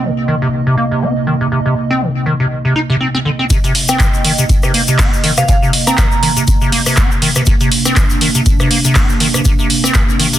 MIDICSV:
0, 0, Header, 1, 5, 480
1, 0, Start_track
1, 0, Key_signature, -3, "minor"
1, 0, Tempo, 495868
1, 1469, Time_signature, 4, 2, 24, 8
1, 10057, End_track
2, 0, Start_track
2, 0, Title_t, "Synth bell"
2, 0, Program_c, 0, 98
2, 3764, Note_on_c, 0, 79, 93
2, 3867, Note_off_c, 0, 79, 0
2, 5203, Note_on_c, 0, 77, 95
2, 5271, Note_off_c, 0, 77, 0
2, 5310, Note_on_c, 0, 77, 78
2, 5396, Note_off_c, 0, 77, 0
2, 5683, Note_on_c, 0, 82, 93
2, 6163, Note_off_c, 0, 82, 0
2, 10057, End_track
3, 0, Start_track
3, 0, Title_t, "Analog synth pad"
3, 0, Program_c, 1, 89
3, 0, Note_on_c, 1, 48, 79
3, 0, Note_on_c, 1, 58, 74
3, 0, Note_on_c, 1, 75, 85
3, 3349, Note_off_c, 1, 58, 0
3, 3350, Note_off_c, 1, 48, 0
3, 3350, Note_off_c, 1, 75, 0
3, 3391, Note_on_c, 1, 48, 85
3, 3391, Note_on_c, 1, 58, 76
3, 3391, Note_on_c, 1, 75, 92
3, 7218, Note_off_c, 1, 75, 0
3, 7229, Note_on_c, 1, 62, 93
3, 10057, Note_off_c, 1, 48, 0
3, 10057, Note_off_c, 1, 58, 0
3, 10057, Note_off_c, 1, 62, 0
3, 10057, End_track
4, 0, Start_track
4, 0, Title_t, "Acid bass"
4, 0, Program_c, 2, 38
4, 30, Note_on_c, 2, 50, 77
4, 104, Note_off_c, 2, 50, 0
4, 270, Note_on_c, 2, 51, 77
4, 344, Note_off_c, 2, 51, 0
4, 405, Note_on_c, 2, 48, 75
4, 462, Note_off_c, 2, 48, 0
4, 644, Note_on_c, 2, 48, 78
4, 731, Note_off_c, 2, 48, 0
4, 749, Note_on_c, 2, 58, 74
4, 823, Note_off_c, 2, 58, 0
4, 883, Note_on_c, 2, 48, 75
4, 989, Note_on_c, 2, 60, 84
4, 1003, Note_off_c, 2, 48, 0
4, 1100, Note_off_c, 2, 60, 0
4, 1228, Note_on_c, 2, 51, 76
4, 1303, Note_off_c, 2, 51, 0
4, 1364, Note_on_c, 2, 48, 78
4, 1422, Note_off_c, 2, 48, 0
4, 1469, Note_on_c, 2, 48, 83
4, 1543, Note_off_c, 2, 48, 0
4, 1603, Note_on_c, 2, 48, 76
4, 1690, Note_off_c, 2, 48, 0
4, 1844, Note_on_c, 2, 60, 99
4, 1948, Note_on_c, 2, 50, 77
4, 1963, Note_off_c, 2, 60, 0
4, 2023, Note_off_c, 2, 50, 0
4, 2188, Note_on_c, 2, 51, 75
4, 2263, Note_off_c, 2, 51, 0
4, 2323, Note_on_c, 2, 48, 75
4, 2381, Note_off_c, 2, 48, 0
4, 2563, Note_on_c, 2, 48, 74
4, 2650, Note_off_c, 2, 48, 0
4, 2669, Note_on_c, 2, 63, 99
4, 2714, Note_off_c, 2, 63, 0
4, 2804, Note_on_c, 2, 48, 102
4, 2862, Note_off_c, 2, 48, 0
4, 2909, Note_on_c, 2, 60, 82
4, 2983, Note_off_c, 2, 60, 0
4, 3046, Note_on_c, 2, 60, 102
4, 3079, Note_off_c, 2, 60, 0
4, 3150, Note_on_c, 2, 50, 77
4, 3194, Note_off_c, 2, 50, 0
4, 3284, Note_on_c, 2, 60, 80
4, 3342, Note_off_c, 2, 60, 0
4, 3389, Note_on_c, 2, 48, 86
4, 3464, Note_off_c, 2, 48, 0
4, 3524, Note_on_c, 2, 48, 77
4, 3611, Note_off_c, 2, 48, 0
4, 3764, Note_on_c, 2, 60, 101
4, 3870, Note_on_c, 2, 50, 81
4, 3884, Note_off_c, 2, 60, 0
4, 3944, Note_off_c, 2, 50, 0
4, 4110, Note_on_c, 2, 51, 79
4, 4184, Note_off_c, 2, 51, 0
4, 4244, Note_on_c, 2, 48, 79
4, 4302, Note_off_c, 2, 48, 0
4, 4485, Note_on_c, 2, 48, 79
4, 4571, Note_off_c, 2, 48, 0
4, 4589, Note_on_c, 2, 58, 78
4, 4663, Note_off_c, 2, 58, 0
4, 4725, Note_on_c, 2, 48, 77
4, 4828, Note_on_c, 2, 60, 86
4, 4843, Note_off_c, 2, 48, 0
4, 4940, Note_off_c, 2, 60, 0
4, 5068, Note_on_c, 2, 51, 80
4, 5143, Note_off_c, 2, 51, 0
4, 5203, Note_on_c, 2, 48, 80
4, 5261, Note_off_c, 2, 48, 0
4, 5309, Note_on_c, 2, 48, 83
4, 5383, Note_off_c, 2, 48, 0
4, 5444, Note_on_c, 2, 48, 77
4, 5531, Note_off_c, 2, 48, 0
4, 5684, Note_on_c, 2, 60, 103
4, 5788, Note_on_c, 2, 50, 82
4, 5803, Note_off_c, 2, 60, 0
4, 5863, Note_off_c, 2, 50, 0
4, 6028, Note_on_c, 2, 51, 78
4, 6103, Note_off_c, 2, 51, 0
4, 6163, Note_on_c, 2, 48, 78
4, 6222, Note_off_c, 2, 48, 0
4, 6403, Note_on_c, 2, 48, 79
4, 6490, Note_off_c, 2, 48, 0
4, 6508, Note_on_c, 2, 58, 77
4, 6582, Note_off_c, 2, 58, 0
4, 6644, Note_on_c, 2, 48, 80
4, 6748, Note_on_c, 2, 60, 85
4, 6762, Note_off_c, 2, 48, 0
4, 6860, Note_off_c, 2, 60, 0
4, 6988, Note_on_c, 2, 51, 82
4, 7063, Note_off_c, 2, 51, 0
4, 7123, Note_on_c, 2, 48, 82
4, 7181, Note_off_c, 2, 48, 0
4, 7228, Note_on_c, 2, 48, 85
4, 7303, Note_off_c, 2, 48, 0
4, 7364, Note_on_c, 2, 48, 78
4, 7451, Note_off_c, 2, 48, 0
4, 7603, Note_on_c, 2, 60, 105
4, 7708, Note_on_c, 2, 50, 80
4, 7723, Note_off_c, 2, 60, 0
4, 7783, Note_off_c, 2, 50, 0
4, 7948, Note_on_c, 2, 51, 79
4, 8023, Note_off_c, 2, 51, 0
4, 8082, Note_on_c, 2, 48, 81
4, 8141, Note_off_c, 2, 48, 0
4, 8323, Note_on_c, 2, 48, 80
4, 8410, Note_off_c, 2, 48, 0
4, 8427, Note_on_c, 2, 58, 77
4, 8502, Note_off_c, 2, 58, 0
4, 8563, Note_on_c, 2, 48, 80
4, 8668, Note_on_c, 2, 60, 82
4, 8683, Note_off_c, 2, 48, 0
4, 8780, Note_off_c, 2, 60, 0
4, 8908, Note_on_c, 2, 51, 81
4, 8983, Note_off_c, 2, 51, 0
4, 9043, Note_on_c, 2, 48, 82
4, 9102, Note_off_c, 2, 48, 0
4, 9148, Note_on_c, 2, 48, 84
4, 9223, Note_off_c, 2, 48, 0
4, 9282, Note_on_c, 2, 48, 78
4, 9370, Note_off_c, 2, 48, 0
4, 9522, Note_on_c, 2, 60, 102
4, 9628, Note_on_c, 2, 50, 82
4, 9643, Note_off_c, 2, 60, 0
4, 9703, Note_off_c, 2, 50, 0
4, 9868, Note_on_c, 2, 51, 76
4, 9943, Note_off_c, 2, 51, 0
4, 10002, Note_on_c, 2, 48, 80
4, 10057, Note_off_c, 2, 48, 0
4, 10057, End_track
5, 0, Start_track
5, 0, Title_t, "Drums"
5, 3389, Note_on_c, 9, 36, 119
5, 3389, Note_on_c, 9, 42, 69
5, 3389, Note_on_c, 9, 54, 90
5, 3392, Note_on_c, 9, 82, 59
5, 3486, Note_off_c, 9, 36, 0
5, 3486, Note_off_c, 9, 42, 0
5, 3486, Note_off_c, 9, 54, 0
5, 3489, Note_off_c, 9, 82, 0
5, 3524, Note_on_c, 9, 42, 44
5, 3526, Note_on_c, 9, 82, 40
5, 3621, Note_off_c, 9, 42, 0
5, 3623, Note_off_c, 9, 82, 0
5, 3629, Note_on_c, 9, 46, 105
5, 3630, Note_on_c, 9, 54, 71
5, 3726, Note_off_c, 9, 46, 0
5, 3727, Note_off_c, 9, 54, 0
5, 3758, Note_on_c, 9, 82, 87
5, 3764, Note_on_c, 9, 37, 65
5, 3764, Note_on_c, 9, 42, 45
5, 3855, Note_off_c, 9, 82, 0
5, 3861, Note_off_c, 9, 37, 0
5, 3861, Note_off_c, 9, 42, 0
5, 3863, Note_on_c, 9, 39, 127
5, 3869, Note_on_c, 9, 36, 108
5, 3869, Note_on_c, 9, 38, 118
5, 3869, Note_on_c, 9, 42, 73
5, 3869, Note_on_c, 9, 54, 91
5, 3870, Note_on_c, 9, 82, 67
5, 3960, Note_off_c, 9, 39, 0
5, 3966, Note_off_c, 9, 36, 0
5, 3966, Note_off_c, 9, 38, 0
5, 3966, Note_off_c, 9, 42, 0
5, 3966, Note_off_c, 9, 54, 0
5, 3967, Note_off_c, 9, 82, 0
5, 4005, Note_on_c, 9, 82, 41
5, 4102, Note_off_c, 9, 82, 0
5, 4109, Note_on_c, 9, 46, 110
5, 4109, Note_on_c, 9, 54, 74
5, 4206, Note_off_c, 9, 46, 0
5, 4206, Note_off_c, 9, 54, 0
5, 4245, Note_on_c, 9, 42, 55
5, 4246, Note_on_c, 9, 82, 80
5, 4342, Note_off_c, 9, 42, 0
5, 4343, Note_off_c, 9, 82, 0
5, 4349, Note_on_c, 9, 36, 125
5, 4349, Note_on_c, 9, 54, 92
5, 4350, Note_on_c, 9, 42, 70
5, 4352, Note_on_c, 9, 82, 61
5, 4446, Note_off_c, 9, 36, 0
5, 4446, Note_off_c, 9, 54, 0
5, 4447, Note_off_c, 9, 42, 0
5, 4448, Note_off_c, 9, 82, 0
5, 4479, Note_on_c, 9, 82, 44
5, 4484, Note_on_c, 9, 37, 76
5, 4576, Note_off_c, 9, 82, 0
5, 4581, Note_off_c, 9, 37, 0
5, 4589, Note_on_c, 9, 46, 107
5, 4590, Note_on_c, 9, 54, 69
5, 4686, Note_off_c, 9, 46, 0
5, 4687, Note_off_c, 9, 54, 0
5, 4721, Note_on_c, 9, 82, 77
5, 4725, Note_on_c, 9, 38, 44
5, 4725, Note_on_c, 9, 42, 57
5, 4817, Note_off_c, 9, 82, 0
5, 4821, Note_off_c, 9, 42, 0
5, 4822, Note_off_c, 9, 38, 0
5, 4824, Note_on_c, 9, 39, 125
5, 4829, Note_on_c, 9, 36, 113
5, 4829, Note_on_c, 9, 42, 70
5, 4830, Note_on_c, 9, 38, 117
5, 4830, Note_on_c, 9, 46, 80
5, 4836, Note_on_c, 9, 82, 70
5, 4921, Note_off_c, 9, 39, 0
5, 4926, Note_off_c, 9, 36, 0
5, 4926, Note_off_c, 9, 38, 0
5, 4926, Note_off_c, 9, 42, 0
5, 4926, Note_off_c, 9, 46, 0
5, 4933, Note_off_c, 9, 82, 0
5, 4970, Note_on_c, 9, 82, 39
5, 5067, Note_off_c, 9, 82, 0
5, 5069, Note_on_c, 9, 46, 108
5, 5070, Note_on_c, 9, 38, 49
5, 5070, Note_on_c, 9, 54, 72
5, 5166, Note_off_c, 9, 46, 0
5, 5167, Note_off_c, 9, 38, 0
5, 5167, Note_off_c, 9, 54, 0
5, 5201, Note_on_c, 9, 82, 80
5, 5204, Note_on_c, 9, 37, 79
5, 5204, Note_on_c, 9, 42, 56
5, 5298, Note_off_c, 9, 82, 0
5, 5301, Note_off_c, 9, 37, 0
5, 5301, Note_off_c, 9, 42, 0
5, 5309, Note_on_c, 9, 36, 123
5, 5309, Note_on_c, 9, 42, 67
5, 5309, Note_on_c, 9, 54, 88
5, 5310, Note_on_c, 9, 82, 65
5, 5406, Note_off_c, 9, 36, 0
5, 5406, Note_off_c, 9, 42, 0
5, 5406, Note_off_c, 9, 54, 0
5, 5407, Note_off_c, 9, 82, 0
5, 5449, Note_on_c, 9, 82, 39
5, 5546, Note_off_c, 9, 82, 0
5, 5548, Note_on_c, 9, 46, 109
5, 5549, Note_on_c, 9, 54, 68
5, 5645, Note_off_c, 9, 46, 0
5, 5646, Note_off_c, 9, 54, 0
5, 5683, Note_on_c, 9, 37, 64
5, 5683, Note_on_c, 9, 42, 54
5, 5683, Note_on_c, 9, 82, 82
5, 5684, Note_on_c, 9, 38, 52
5, 5779, Note_off_c, 9, 37, 0
5, 5779, Note_off_c, 9, 42, 0
5, 5780, Note_off_c, 9, 82, 0
5, 5781, Note_off_c, 9, 38, 0
5, 5783, Note_on_c, 9, 39, 127
5, 5788, Note_on_c, 9, 42, 69
5, 5788, Note_on_c, 9, 82, 68
5, 5789, Note_on_c, 9, 36, 110
5, 5789, Note_on_c, 9, 38, 117
5, 5789, Note_on_c, 9, 54, 92
5, 5879, Note_off_c, 9, 39, 0
5, 5885, Note_off_c, 9, 42, 0
5, 5885, Note_off_c, 9, 82, 0
5, 5886, Note_off_c, 9, 36, 0
5, 5886, Note_off_c, 9, 38, 0
5, 5886, Note_off_c, 9, 54, 0
5, 5919, Note_on_c, 9, 82, 39
5, 6015, Note_off_c, 9, 82, 0
5, 6028, Note_on_c, 9, 46, 114
5, 6030, Note_on_c, 9, 54, 73
5, 6124, Note_off_c, 9, 46, 0
5, 6127, Note_off_c, 9, 54, 0
5, 6163, Note_on_c, 9, 42, 56
5, 6166, Note_on_c, 9, 82, 80
5, 6260, Note_off_c, 9, 42, 0
5, 6263, Note_off_c, 9, 82, 0
5, 6269, Note_on_c, 9, 36, 127
5, 6269, Note_on_c, 9, 42, 70
5, 6269, Note_on_c, 9, 82, 73
5, 6270, Note_on_c, 9, 54, 92
5, 6365, Note_off_c, 9, 42, 0
5, 6366, Note_off_c, 9, 36, 0
5, 6366, Note_off_c, 9, 82, 0
5, 6367, Note_off_c, 9, 54, 0
5, 6400, Note_on_c, 9, 82, 38
5, 6497, Note_off_c, 9, 82, 0
5, 6509, Note_on_c, 9, 46, 109
5, 6510, Note_on_c, 9, 54, 70
5, 6605, Note_off_c, 9, 46, 0
5, 6607, Note_off_c, 9, 54, 0
5, 6639, Note_on_c, 9, 82, 82
5, 6644, Note_on_c, 9, 37, 78
5, 6644, Note_on_c, 9, 46, 67
5, 6736, Note_off_c, 9, 82, 0
5, 6741, Note_off_c, 9, 37, 0
5, 6741, Note_off_c, 9, 46, 0
5, 6743, Note_on_c, 9, 39, 127
5, 6744, Note_on_c, 9, 82, 70
5, 6749, Note_on_c, 9, 36, 113
5, 6749, Note_on_c, 9, 38, 115
5, 6749, Note_on_c, 9, 42, 68
5, 6749, Note_on_c, 9, 54, 89
5, 6840, Note_off_c, 9, 39, 0
5, 6841, Note_off_c, 9, 82, 0
5, 6845, Note_off_c, 9, 42, 0
5, 6846, Note_off_c, 9, 36, 0
5, 6846, Note_off_c, 9, 38, 0
5, 6846, Note_off_c, 9, 54, 0
5, 6885, Note_on_c, 9, 82, 38
5, 6982, Note_off_c, 9, 82, 0
5, 6989, Note_on_c, 9, 46, 112
5, 6990, Note_on_c, 9, 54, 71
5, 7085, Note_off_c, 9, 46, 0
5, 7087, Note_off_c, 9, 54, 0
5, 7117, Note_on_c, 9, 82, 84
5, 7124, Note_on_c, 9, 37, 79
5, 7124, Note_on_c, 9, 38, 57
5, 7124, Note_on_c, 9, 42, 55
5, 7213, Note_off_c, 9, 82, 0
5, 7221, Note_off_c, 9, 37, 0
5, 7221, Note_off_c, 9, 38, 0
5, 7221, Note_off_c, 9, 42, 0
5, 7221, Note_on_c, 9, 82, 66
5, 7228, Note_on_c, 9, 42, 66
5, 7229, Note_on_c, 9, 36, 124
5, 7229, Note_on_c, 9, 54, 88
5, 7318, Note_off_c, 9, 82, 0
5, 7325, Note_off_c, 9, 42, 0
5, 7326, Note_off_c, 9, 36, 0
5, 7326, Note_off_c, 9, 54, 0
5, 7361, Note_on_c, 9, 82, 40
5, 7363, Note_on_c, 9, 42, 45
5, 7458, Note_off_c, 9, 82, 0
5, 7460, Note_off_c, 9, 42, 0
5, 7468, Note_on_c, 9, 46, 110
5, 7469, Note_on_c, 9, 54, 71
5, 7565, Note_off_c, 9, 46, 0
5, 7566, Note_off_c, 9, 54, 0
5, 7601, Note_on_c, 9, 82, 90
5, 7603, Note_on_c, 9, 37, 66
5, 7603, Note_on_c, 9, 42, 54
5, 7604, Note_off_c, 9, 42, 0
5, 7604, Note_on_c, 9, 42, 44
5, 7698, Note_off_c, 9, 82, 0
5, 7700, Note_off_c, 9, 37, 0
5, 7701, Note_off_c, 9, 42, 0
5, 7703, Note_on_c, 9, 39, 127
5, 7709, Note_on_c, 9, 36, 113
5, 7709, Note_on_c, 9, 38, 119
5, 7709, Note_on_c, 9, 42, 64
5, 7709, Note_on_c, 9, 54, 94
5, 7712, Note_on_c, 9, 82, 69
5, 7800, Note_off_c, 9, 39, 0
5, 7805, Note_off_c, 9, 42, 0
5, 7806, Note_off_c, 9, 36, 0
5, 7806, Note_off_c, 9, 38, 0
5, 7806, Note_off_c, 9, 54, 0
5, 7809, Note_off_c, 9, 82, 0
5, 7840, Note_on_c, 9, 82, 44
5, 7936, Note_off_c, 9, 82, 0
5, 7949, Note_on_c, 9, 46, 111
5, 7949, Note_on_c, 9, 54, 73
5, 8045, Note_off_c, 9, 46, 0
5, 8045, Note_off_c, 9, 54, 0
5, 8081, Note_on_c, 9, 82, 80
5, 8084, Note_on_c, 9, 42, 52
5, 8177, Note_off_c, 9, 82, 0
5, 8180, Note_off_c, 9, 42, 0
5, 8188, Note_on_c, 9, 42, 67
5, 8188, Note_on_c, 9, 82, 69
5, 8189, Note_on_c, 9, 36, 127
5, 8190, Note_on_c, 9, 54, 93
5, 8284, Note_off_c, 9, 82, 0
5, 8285, Note_off_c, 9, 42, 0
5, 8286, Note_off_c, 9, 36, 0
5, 8286, Note_off_c, 9, 54, 0
5, 8321, Note_on_c, 9, 82, 42
5, 8323, Note_on_c, 9, 37, 78
5, 8418, Note_off_c, 9, 82, 0
5, 8420, Note_off_c, 9, 37, 0
5, 8428, Note_on_c, 9, 46, 115
5, 8429, Note_on_c, 9, 54, 69
5, 8525, Note_off_c, 9, 46, 0
5, 8526, Note_off_c, 9, 54, 0
5, 8563, Note_on_c, 9, 82, 82
5, 8564, Note_on_c, 9, 38, 45
5, 8564, Note_on_c, 9, 42, 54
5, 8660, Note_off_c, 9, 42, 0
5, 8660, Note_off_c, 9, 82, 0
5, 8661, Note_off_c, 9, 38, 0
5, 8663, Note_on_c, 9, 39, 127
5, 8667, Note_on_c, 9, 82, 76
5, 8668, Note_on_c, 9, 42, 67
5, 8669, Note_on_c, 9, 36, 118
5, 8670, Note_on_c, 9, 38, 118
5, 8670, Note_on_c, 9, 46, 82
5, 8759, Note_off_c, 9, 39, 0
5, 8764, Note_off_c, 9, 82, 0
5, 8765, Note_off_c, 9, 42, 0
5, 8766, Note_off_c, 9, 36, 0
5, 8767, Note_off_c, 9, 38, 0
5, 8767, Note_off_c, 9, 46, 0
5, 8802, Note_on_c, 9, 82, 41
5, 8899, Note_off_c, 9, 82, 0
5, 8908, Note_on_c, 9, 46, 116
5, 8911, Note_on_c, 9, 38, 48
5, 8911, Note_on_c, 9, 54, 70
5, 9005, Note_off_c, 9, 46, 0
5, 9008, Note_off_c, 9, 38, 0
5, 9008, Note_off_c, 9, 54, 0
5, 9044, Note_on_c, 9, 37, 80
5, 9044, Note_on_c, 9, 42, 52
5, 9046, Note_on_c, 9, 82, 88
5, 9140, Note_off_c, 9, 37, 0
5, 9140, Note_off_c, 9, 42, 0
5, 9143, Note_off_c, 9, 82, 0
5, 9144, Note_on_c, 9, 82, 71
5, 9149, Note_on_c, 9, 36, 125
5, 9149, Note_on_c, 9, 42, 62
5, 9150, Note_on_c, 9, 54, 90
5, 9241, Note_off_c, 9, 82, 0
5, 9246, Note_off_c, 9, 36, 0
5, 9246, Note_off_c, 9, 42, 0
5, 9247, Note_off_c, 9, 54, 0
5, 9282, Note_on_c, 9, 82, 42
5, 9379, Note_off_c, 9, 82, 0
5, 9389, Note_on_c, 9, 46, 107
5, 9390, Note_on_c, 9, 54, 70
5, 9486, Note_off_c, 9, 46, 0
5, 9487, Note_off_c, 9, 54, 0
5, 9524, Note_on_c, 9, 37, 69
5, 9524, Note_on_c, 9, 42, 53
5, 9525, Note_on_c, 9, 38, 52
5, 9536, Note_on_c, 9, 82, 83
5, 9620, Note_off_c, 9, 37, 0
5, 9620, Note_off_c, 9, 42, 0
5, 9621, Note_off_c, 9, 38, 0
5, 9623, Note_off_c, 9, 82, 0
5, 9623, Note_on_c, 9, 39, 121
5, 9623, Note_on_c, 9, 82, 62
5, 9629, Note_on_c, 9, 36, 114
5, 9629, Note_on_c, 9, 42, 64
5, 9630, Note_on_c, 9, 38, 119
5, 9630, Note_on_c, 9, 54, 92
5, 9719, Note_off_c, 9, 82, 0
5, 9720, Note_off_c, 9, 39, 0
5, 9726, Note_off_c, 9, 36, 0
5, 9726, Note_off_c, 9, 38, 0
5, 9726, Note_off_c, 9, 42, 0
5, 9726, Note_off_c, 9, 54, 0
5, 9770, Note_on_c, 9, 82, 41
5, 9867, Note_off_c, 9, 82, 0
5, 9869, Note_on_c, 9, 46, 115
5, 9869, Note_on_c, 9, 54, 74
5, 9966, Note_off_c, 9, 46, 0
5, 9966, Note_off_c, 9, 54, 0
5, 10004, Note_on_c, 9, 42, 53
5, 10006, Note_on_c, 9, 82, 80
5, 10057, Note_off_c, 9, 42, 0
5, 10057, Note_off_c, 9, 82, 0
5, 10057, End_track
0, 0, End_of_file